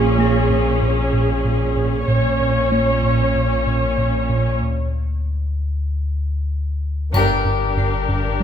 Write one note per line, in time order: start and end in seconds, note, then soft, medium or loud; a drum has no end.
0.00 2.04 A#1 soft
0.00 2.04 A#1 medium
0.00 2.04 A#2 soft
0.00 2.04 C#4 medium
0.00 2.04 G#4 medium
0.00 0.18 A#6 soft
0.18 0.38 A#3 soft
0.18 2.11 A#6 soft
0.50 0.69 A#2 medium
0.82 1.01 A#2 soft
1.13 1.32 A#2 soft
1.45 1.64 A#2 medium
1.77 1.96 A#2 soft
2.08 4.57 A#1 soft
2.08 4.63 A#1 medium
2.08 4.57 A#2 soft
2.08 2.27 A#2 medium
2.08 4.57 C#4 soft
2.08 4.57 C#5 soft
2.08 4.64 G#6 soft
2.41 2.59 A#2 soft
2.72 2.91 A#3 soft
3.03 3.22 A#2 medium
3.35 3.54 A#2 soft
3.67 3.86 A#2 soft
3.98 4.17 A#2 medium
4.30 4.48 A#2 soft
4.61 7.14 D2 medium
7.13 8.43 G1 soft
7.13 8.43 G1 medium
7.13 8.43 G2 soft
7.13 7.33 G2 medium
7.13 8.43 D4 soft
7.13 8.43 G4 soft
7.13 8.43 A#4 soft
7.13 triangle soft
7.45 7.64 G2 soft
7.77 7.96 G2 soft
7.77 8.43 C7 soft
8.09 8.27 G2 medium